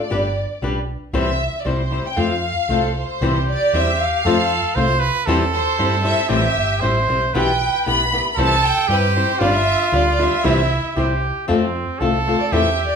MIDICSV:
0, 0, Header, 1, 5, 480
1, 0, Start_track
1, 0, Key_signature, -1, "major"
1, 0, Tempo, 517241
1, 103, Time_signature, 2, 2, 24, 8
1, 2984, Key_signature, 0, "major"
1, 12023, End_track
2, 0, Start_track
2, 0, Title_t, "Violin section"
2, 0, Program_c, 0, 48
2, 0, Note_on_c, 0, 74, 66
2, 552, Note_off_c, 0, 74, 0
2, 1076, Note_on_c, 0, 76, 80
2, 1450, Note_off_c, 0, 76, 0
2, 1480, Note_on_c, 0, 74, 50
2, 1537, Note_off_c, 0, 74, 0
2, 1560, Note_on_c, 0, 72, 74
2, 1906, Note_off_c, 0, 72, 0
2, 1910, Note_on_c, 0, 79, 77
2, 2018, Note_on_c, 0, 77, 79
2, 2019, Note_off_c, 0, 79, 0
2, 2511, Note_on_c, 0, 69, 69
2, 2733, Note_off_c, 0, 69, 0
2, 2746, Note_off_c, 0, 77, 0
2, 2751, Note_on_c, 0, 72, 74
2, 3200, Note_off_c, 0, 72, 0
2, 3244, Note_on_c, 0, 74, 91
2, 3476, Note_off_c, 0, 74, 0
2, 3478, Note_on_c, 0, 76, 88
2, 3706, Note_on_c, 0, 77, 88
2, 3716, Note_off_c, 0, 76, 0
2, 4658, Note_off_c, 0, 77, 0
2, 5146, Note_on_c, 0, 72, 95
2, 5582, Note_off_c, 0, 72, 0
2, 5617, Note_on_c, 0, 76, 88
2, 5841, Note_off_c, 0, 76, 0
2, 5852, Note_on_c, 0, 76, 86
2, 6543, Note_off_c, 0, 76, 0
2, 6816, Note_on_c, 0, 79, 92
2, 7264, Note_off_c, 0, 79, 0
2, 7300, Note_on_c, 0, 83, 90
2, 7707, Note_off_c, 0, 83, 0
2, 7718, Note_on_c, 0, 83, 65
2, 7777, Note_off_c, 0, 83, 0
2, 7784, Note_on_c, 0, 81, 105
2, 8022, Note_off_c, 0, 81, 0
2, 8027, Note_on_c, 0, 79, 96
2, 8258, Note_off_c, 0, 79, 0
2, 8272, Note_on_c, 0, 71, 82
2, 8490, Note_on_c, 0, 72, 81
2, 8504, Note_off_c, 0, 71, 0
2, 8712, Note_off_c, 0, 72, 0
2, 8739, Note_on_c, 0, 74, 92
2, 8857, Note_off_c, 0, 74, 0
2, 8858, Note_on_c, 0, 76, 88
2, 9189, Note_off_c, 0, 76, 0
2, 9223, Note_on_c, 0, 74, 75
2, 9339, Note_off_c, 0, 74, 0
2, 9351, Note_on_c, 0, 74, 83
2, 9455, Note_off_c, 0, 74, 0
2, 9475, Note_on_c, 0, 76, 78
2, 10182, Note_off_c, 0, 76, 0
2, 11387, Note_on_c, 0, 72, 70
2, 11496, Note_off_c, 0, 72, 0
2, 11503, Note_on_c, 0, 74, 79
2, 11556, Note_off_c, 0, 74, 0
2, 11616, Note_on_c, 0, 76, 73
2, 11914, Note_off_c, 0, 76, 0
2, 11951, Note_on_c, 0, 74, 74
2, 12023, Note_off_c, 0, 74, 0
2, 12023, End_track
3, 0, Start_track
3, 0, Title_t, "Trumpet"
3, 0, Program_c, 1, 56
3, 2978, Note_on_c, 1, 67, 78
3, 3907, Note_off_c, 1, 67, 0
3, 3946, Note_on_c, 1, 69, 89
3, 4413, Note_on_c, 1, 72, 102
3, 4427, Note_off_c, 1, 69, 0
3, 4639, Note_on_c, 1, 71, 108
3, 4653, Note_off_c, 1, 72, 0
3, 4882, Note_on_c, 1, 69, 90
3, 4896, Note_off_c, 1, 71, 0
3, 5835, Note_on_c, 1, 67, 88
3, 5849, Note_off_c, 1, 69, 0
3, 6314, Note_on_c, 1, 72, 90
3, 6328, Note_off_c, 1, 67, 0
3, 6813, Note_on_c, 1, 71, 73
3, 6827, Note_off_c, 1, 72, 0
3, 7527, Note_off_c, 1, 71, 0
3, 7761, Note_on_c, 1, 69, 100
3, 8241, Note_on_c, 1, 67, 102
3, 8255, Note_off_c, 1, 69, 0
3, 8716, Note_on_c, 1, 65, 97
3, 8730, Note_off_c, 1, 67, 0
3, 9689, Note_on_c, 1, 64, 79
3, 9703, Note_off_c, 1, 65, 0
3, 10163, Note_off_c, 1, 64, 0
3, 10169, Note_on_c, 1, 67, 77
3, 10623, Note_off_c, 1, 67, 0
3, 10654, Note_on_c, 1, 60, 76
3, 11135, Note_on_c, 1, 69, 95
3, 11149, Note_off_c, 1, 60, 0
3, 11621, Note_on_c, 1, 67, 94
3, 11635, Note_off_c, 1, 69, 0
3, 12023, Note_off_c, 1, 67, 0
3, 12023, End_track
4, 0, Start_track
4, 0, Title_t, "Nylon-string guitar"
4, 0, Program_c, 2, 24
4, 95, Note_on_c, 2, 55, 62
4, 100, Note_on_c, 2, 62, 63
4, 101, Note_on_c, 2, 67, 61
4, 108, Note_on_c, 2, 71, 70
4, 243, Note_off_c, 2, 55, 0
4, 246, Note_off_c, 2, 62, 0
4, 246, Note_off_c, 2, 67, 0
4, 250, Note_off_c, 2, 71, 0
4, 578, Note_on_c, 2, 55, 56
4, 584, Note_on_c, 2, 62, 60
4, 591, Note_on_c, 2, 67, 63
4, 593, Note_on_c, 2, 71, 55
4, 722, Note_off_c, 2, 55, 0
4, 725, Note_off_c, 2, 62, 0
4, 728, Note_off_c, 2, 67, 0
4, 729, Note_off_c, 2, 71, 0
4, 1053, Note_on_c, 2, 48, 62
4, 1056, Note_on_c, 2, 52, 65
4, 1056, Note_on_c, 2, 55, 70
4, 1057, Note_on_c, 2, 60, 71
4, 1061, Note_on_c, 2, 64, 77
4, 1064, Note_on_c, 2, 72, 78
4, 1198, Note_off_c, 2, 48, 0
4, 1199, Note_off_c, 2, 52, 0
4, 1199, Note_off_c, 2, 55, 0
4, 1200, Note_off_c, 2, 60, 0
4, 1202, Note_off_c, 2, 64, 0
4, 1203, Note_off_c, 2, 72, 0
4, 1530, Note_on_c, 2, 55, 48
4, 1536, Note_on_c, 2, 60, 57
4, 1539, Note_on_c, 2, 64, 48
4, 1544, Note_on_c, 2, 72, 57
4, 1675, Note_off_c, 2, 55, 0
4, 1678, Note_off_c, 2, 60, 0
4, 1680, Note_off_c, 2, 64, 0
4, 1682, Note_off_c, 2, 72, 0
4, 1770, Note_on_c, 2, 55, 39
4, 1780, Note_on_c, 2, 60, 47
4, 1781, Note_on_c, 2, 64, 42
4, 1791, Note_on_c, 2, 72, 49
4, 1913, Note_off_c, 2, 55, 0
4, 1919, Note_off_c, 2, 60, 0
4, 1919, Note_off_c, 2, 64, 0
4, 1924, Note_off_c, 2, 72, 0
4, 2008, Note_on_c, 2, 57, 56
4, 2011, Note_on_c, 2, 53, 58
4, 2014, Note_on_c, 2, 60, 55
4, 2015, Note_on_c, 2, 65, 55
4, 2017, Note_on_c, 2, 72, 54
4, 2155, Note_off_c, 2, 57, 0
4, 2157, Note_off_c, 2, 53, 0
4, 2158, Note_off_c, 2, 60, 0
4, 2158, Note_off_c, 2, 65, 0
4, 2160, Note_off_c, 2, 72, 0
4, 2495, Note_on_c, 2, 57, 47
4, 2505, Note_on_c, 2, 60, 38
4, 2507, Note_on_c, 2, 65, 45
4, 2513, Note_on_c, 2, 72, 47
4, 2643, Note_off_c, 2, 57, 0
4, 2648, Note_off_c, 2, 60, 0
4, 2649, Note_off_c, 2, 65, 0
4, 2652, Note_off_c, 2, 72, 0
4, 2985, Note_on_c, 2, 48, 60
4, 2986, Note_on_c, 2, 52, 66
4, 2988, Note_on_c, 2, 55, 55
4, 2990, Note_on_c, 2, 60, 70
4, 2993, Note_on_c, 2, 64, 70
4, 2994, Note_on_c, 2, 72, 70
4, 3132, Note_off_c, 2, 48, 0
4, 3133, Note_off_c, 2, 52, 0
4, 3134, Note_off_c, 2, 55, 0
4, 3135, Note_off_c, 2, 60, 0
4, 3136, Note_off_c, 2, 64, 0
4, 3137, Note_off_c, 2, 72, 0
4, 3467, Note_on_c, 2, 55, 42
4, 3472, Note_on_c, 2, 60, 52
4, 3477, Note_on_c, 2, 64, 41
4, 3483, Note_on_c, 2, 72, 54
4, 3614, Note_off_c, 2, 55, 0
4, 3617, Note_off_c, 2, 60, 0
4, 3619, Note_off_c, 2, 64, 0
4, 3622, Note_off_c, 2, 72, 0
4, 3952, Note_on_c, 2, 53, 68
4, 3952, Note_on_c, 2, 57, 63
4, 3956, Note_on_c, 2, 60, 74
4, 3959, Note_on_c, 2, 65, 74
4, 3961, Note_on_c, 2, 72, 73
4, 4092, Note_off_c, 2, 53, 0
4, 4092, Note_off_c, 2, 57, 0
4, 4095, Note_off_c, 2, 60, 0
4, 4096, Note_off_c, 2, 65, 0
4, 4097, Note_off_c, 2, 72, 0
4, 4422, Note_on_c, 2, 57, 52
4, 4424, Note_on_c, 2, 60, 65
4, 4429, Note_on_c, 2, 65, 56
4, 4432, Note_on_c, 2, 72, 75
4, 4566, Note_off_c, 2, 57, 0
4, 4566, Note_off_c, 2, 60, 0
4, 4569, Note_off_c, 2, 65, 0
4, 4571, Note_off_c, 2, 72, 0
4, 4893, Note_on_c, 2, 52, 80
4, 4900, Note_on_c, 2, 55, 86
4, 4904, Note_on_c, 2, 60, 94
4, 4905, Note_on_c, 2, 64, 84
4, 4907, Note_on_c, 2, 72, 92
4, 5037, Note_off_c, 2, 52, 0
4, 5040, Note_off_c, 2, 55, 0
4, 5043, Note_off_c, 2, 60, 0
4, 5043, Note_off_c, 2, 64, 0
4, 5044, Note_off_c, 2, 72, 0
4, 5371, Note_on_c, 2, 55, 59
4, 5377, Note_on_c, 2, 60, 50
4, 5380, Note_on_c, 2, 64, 55
4, 5383, Note_on_c, 2, 72, 59
4, 5514, Note_off_c, 2, 55, 0
4, 5517, Note_off_c, 2, 60, 0
4, 5518, Note_off_c, 2, 64, 0
4, 5520, Note_off_c, 2, 72, 0
4, 5598, Note_on_c, 2, 55, 49
4, 5602, Note_on_c, 2, 60, 41
4, 5612, Note_on_c, 2, 72, 51
4, 5613, Note_on_c, 2, 64, 50
4, 5745, Note_off_c, 2, 55, 0
4, 5747, Note_off_c, 2, 60, 0
4, 5752, Note_off_c, 2, 64, 0
4, 5752, Note_off_c, 2, 72, 0
4, 5832, Note_on_c, 2, 45, 62
4, 5835, Note_on_c, 2, 55, 70
4, 5837, Note_on_c, 2, 52, 72
4, 5842, Note_on_c, 2, 60, 75
4, 5843, Note_on_c, 2, 64, 78
4, 5844, Note_on_c, 2, 72, 78
4, 5984, Note_off_c, 2, 45, 0
4, 5986, Note_off_c, 2, 55, 0
4, 5987, Note_off_c, 2, 52, 0
4, 5989, Note_off_c, 2, 60, 0
4, 5990, Note_off_c, 2, 64, 0
4, 5990, Note_off_c, 2, 72, 0
4, 6325, Note_on_c, 2, 55, 50
4, 6329, Note_on_c, 2, 60, 48
4, 6333, Note_on_c, 2, 64, 49
4, 6340, Note_on_c, 2, 72, 52
4, 6475, Note_off_c, 2, 55, 0
4, 6478, Note_off_c, 2, 60, 0
4, 6480, Note_off_c, 2, 64, 0
4, 6483, Note_off_c, 2, 72, 0
4, 6575, Note_on_c, 2, 55, 49
4, 6580, Note_on_c, 2, 60, 52
4, 6582, Note_on_c, 2, 64, 45
4, 6586, Note_on_c, 2, 72, 52
4, 6720, Note_off_c, 2, 55, 0
4, 6722, Note_off_c, 2, 60, 0
4, 6723, Note_off_c, 2, 64, 0
4, 6725, Note_off_c, 2, 72, 0
4, 6818, Note_on_c, 2, 47, 69
4, 6820, Note_on_c, 2, 52, 72
4, 6823, Note_on_c, 2, 59, 60
4, 6824, Note_on_c, 2, 67, 72
4, 6826, Note_on_c, 2, 64, 72
4, 6830, Note_on_c, 2, 71, 69
4, 6964, Note_off_c, 2, 47, 0
4, 6965, Note_off_c, 2, 52, 0
4, 6967, Note_off_c, 2, 59, 0
4, 6967, Note_off_c, 2, 67, 0
4, 6968, Note_off_c, 2, 64, 0
4, 6970, Note_off_c, 2, 71, 0
4, 7297, Note_on_c, 2, 59, 57
4, 7304, Note_on_c, 2, 64, 57
4, 7307, Note_on_c, 2, 67, 45
4, 7310, Note_on_c, 2, 71, 49
4, 7443, Note_off_c, 2, 59, 0
4, 7446, Note_off_c, 2, 64, 0
4, 7447, Note_off_c, 2, 67, 0
4, 7449, Note_off_c, 2, 71, 0
4, 7540, Note_on_c, 2, 59, 37
4, 7546, Note_on_c, 2, 64, 51
4, 7552, Note_on_c, 2, 67, 42
4, 7558, Note_on_c, 2, 71, 48
4, 7682, Note_off_c, 2, 59, 0
4, 7685, Note_off_c, 2, 64, 0
4, 7688, Note_off_c, 2, 67, 0
4, 7691, Note_off_c, 2, 71, 0
4, 7775, Note_on_c, 2, 48, 68
4, 7778, Note_on_c, 2, 52, 65
4, 7780, Note_on_c, 2, 55, 62
4, 7782, Note_on_c, 2, 60, 64
4, 7786, Note_on_c, 2, 64, 68
4, 7788, Note_on_c, 2, 72, 75
4, 7921, Note_off_c, 2, 48, 0
4, 7922, Note_off_c, 2, 52, 0
4, 7923, Note_off_c, 2, 55, 0
4, 7925, Note_off_c, 2, 60, 0
4, 7927, Note_off_c, 2, 64, 0
4, 7927, Note_off_c, 2, 72, 0
4, 8251, Note_on_c, 2, 55, 48
4, 8256, Note_on_c, 2, 60, 52
4, 8261, Note_on_c, 2, 72, 63
4, 8263, Note_on_c, 2, 64, 64
4, 8397, Note_off_c, 2, 55, 0
4, 8400, Note_off_c, 2, 60, 0
4, 8402, Note_off_c, 2, 72, 0
4, 8403, Note_off_c, 2, 64, 0
4, 8498, Note_on_c, 2, 55, 38
4, 8504, Note_on_c, 2, 60, 55
4, 8506, Note_on_c, 2, 64, 47
4, 8515, Note_on_c, 2, 72, 55
4, 8638, Note_off_c, 2, 55, 0
4, 8641, Note_off_c, 2, 60, 0
4, 8642, Note_off_c, 2, 64, 0
4, 8647, Note_off_c, 2, 72, 0
4, 8726, Note_on_c, 2, 55, 68
4, 8728, Note_on_c, 2, 62, 69
4, 8732, Note_on_c, 2, 65, 64
4, 8735, Note_on_c, 2, 71, 78
4, 8874, Note_off_c, 2, 55, 0
4, 8875, Note_off_c, 2, 62, 0
4, 8877, Note_off_c, 2, 65, 0
4, 8879, Note_off_c, 2, 71, 0
4, 9204, Note_on_c, 2, 55, 54
4, 9209, Note_on_c, 2, 62, 51
4, 9216, Note_on_c, 2, 65, 69
4, 9217, Note_on_c, 2, 71, 54
4, 9353, Note_off_c, 2, 55, 0
4, 9356, Note_off_c, 2, 62, 0
4, 9359, Note_off_c, 2, 65, 0
4, 9360, Note_off_c, 2, 71, 0
4, 9451, Note_on_c, 2, 55, 43
4, 9456, Note_on_c, 2, 62, 53
4, 9460, Note_on_c, 2, 65, 41
4, 9463, Note_on_c, 2, 71, 51
4, 9594, Note_off_c, 2, 55, 0
4, 9596, Note_off_c, 2, 62, 0
4, 9598, Note_off_c, 2, 65, 0
4, 9600, Note_off_c, 2, 71, 0
4, 9686, Note_on_c, 2, 48, 64
4, 9691, Note_on_c, 2, 52, 76
4, 9691, Note_on_c, 2, 55, 76
4, 9697, Note_on_c, 2, 64, 82
4, 9697, Note_on_c, 2, 72, 66
4, 9698, Note_on_c, 2, 60, 72
4, 9833, Note_off_c, 2, 48, 0
4, 9835, Note_off_c, 2, 52, 0
4, 9835, Note_off_c, 2, 55, 0
4, 9838, Note_off_c, 2, 64, 0
4, 9839, Note_off_c, 2, 60, 0
4, 9839, Note_off_c, 2, 72, 0
4, 10171, Note_on_c, 2, 55, 52
4, 10177, Note_on_c, 2, 60, 60
4, 10180, Note_on_c, 2, 64, 55
4, 10188, Note_on_c, 2, 72, 56
4, 10319, Note_off_c, 2, 55, 0
4, 10322, Note_off_c, 2, 60, 0
4, 10324, Note_off_c, 2, 64, 0
4, 10328, Note_off_c, 2, 72, 0
4, 10652, Note_on_c, 2, 53, 75
4, 10656, Note_on_c, 2, 57, 77
4, 10659, Note_on_c, 2, 60, 66
4, 10659, Note_on_c, 2, 65, 83
4, 10663, Note_on_c, 2, 69, 72
4, 10803, Note_off_c, 2, 53, 0
4, 10805, Note_off_c, 2, 57, 0
4, 10806, Note_off_c, 2, 60, 0
4, 10807, Note_off_c, 2, 65, 0
4, 10809, Note_off_c, 2, 69, 0
4, 11141, Note_on_c, 2, 57, 51
4, 11144, Note_on_c, 2, 60, 52
4, 11153, Note_on_c, 2, 65, 60
4, 11153, Note_on_c, 2, 69, 63
4, 11287, Note_off_c, 2, 57, 0
4, 11289, Note_off_c, 2, 60, 0
4, 11293, Note_off_c, 2, 65, 0
4, 11293, Note_off_c, 2, 69, 0
4, 11389, Note_on_c, 2, 57, 42
4, 11394, Note_on_c, 2, 60, 46
4, 11400, Note_on_c, 2, 65, 46
4, 11406, Note_on_c, 2, 69, 49
4, 11529, Note_off_c, 2, 57, 0
4, 11531, Note_off_c, 2, 60, 0
4, 11535, Note_off_c, 2, 65, 0
4, 11538, Note_off_c, 2, 69, 0
4, 11621, Note_on_c, 2, 52, 65
4, 11622, Note_on_c, 2, 57, 68
4, 11627, Note_on_c, 2, 60, 76
4, 11630, Note_on_c, 2, 64, 73
4, 11637, Note_on_c, 2, 69, 62
4, 11766, Note_off_c, 2, 52, 0
4, 11767, Note_off_c, 2, 57, 0
4, 11769, Note_off_c, 2, 60, 0
4, 11771, Note_off_c, 2, 64, 0
4, 11774, Note_off_c, 2, 69, 0
4, 12023, End_track
5, 0, Start_track
5, 0, Title_t, "Picked electric bass"
5, 0, Program_c, 3, 34
5, 105, Note_on_c, 3, 31, 80
5, 413, Note_off_c, 3, 31, 0
5, 575, Note_on_c, 3, 35, 53
5, 885, Note_off_c, 3, 35, 0
5, 1052, Note_on_c, 3, 36, 102
5, 1363, Note_off_c, 3, 36, 0
5, 1534, Note_on_c, 3, 36, 74
5, 1844, Note_off_c, 3, 36, 0
5, 2016, Note_on_c, 3, 41, 92
5, 2329, Note_off_c, 3, 41, 0
5, 2494, Note_on_c, 3, 36, 60
5, 2812, Note_off_c, 3, 36, 0
5, 2979, Note_on_c, 3, 36, 78
5, 3296, Note_off_c, 3, 36, 0
5, 3466, Note_on_c, 3, 40, 70
5, 3777, Note_off_c, 3, 40, 0
5, 3944, Note_on_c, 3, 41, 84
5, 4253, Note_off_c, 3, 41, 0
5, 4414, Note_on_c, 3, 36, 90
5, 4724, Note_off_c, 3, 36, 0
5, 4893, Note_on_c, 3, 40, 83
5, 5201, Note_off_c, 3, 40, 0
5, 5374, Note_on_c, 3, 43, 67
5, 5682, Note_off_c, 3, 43, 0
5, 5847, Note_on_c, 3, 33, 93
5, 6004, Note_off_c, 3, 33, 0
5, 6088, Note_on_c, 3, 31, 69
5, 6305, Note_off_c, 3, 31, 0
5, 6338, Note_on_c, 3, 33, 59
5, 6557, Note_off_c, 3, 33, 0
5, 6580, Note_on_c, 3, 35, 54
5, 6795, Note_off_c, 3, 35, 0
5, 6815, Note_on_c, 3, 35, 82
5, 7129, Note_off_c, 3, 35, 0
5, 7299, Note_on_c, 3, 35, 58
5, 7610, Note_off_c, 3, 35, 0
5, 7769, Note_on_c, 3, 36, 90
5, 8082, Note_off_c, 3, 36, 0
5, 8247, Note_on_c, 3, 43, 77
5, 8559, Note_off_c, 3, 43, 0
5, 8732, Note_on_c, 3, 31, 92
5, 9044, Note_off_c, 3, 31, 0
5, 9211, Note_on_c, 3, 38, 81
5, 9522, Note_off_c, 3, 38, 0
5, 9695, Note_on_c, 3, 36, 87
5, 10006, Note_off_c, 3, 36, 0
5, 10173, Note_on_c, 3, 36, 64
5, 10490, Note_off_c, 3, 36, 0
5, 10667, Note_on_c, 3, 41, 102
5, 10979, Note_off_c, 3, 41, 0
5, 11140, Note_on_c, 3, 36, 68
5, 11452, Note_off_c, 3, 36, 0
5, 11621, Note_on_c, 3, 40, 80
5, 11931, Note_off_c, 3, 40, 0
5, 12023, End_track
0, 0, End_of_file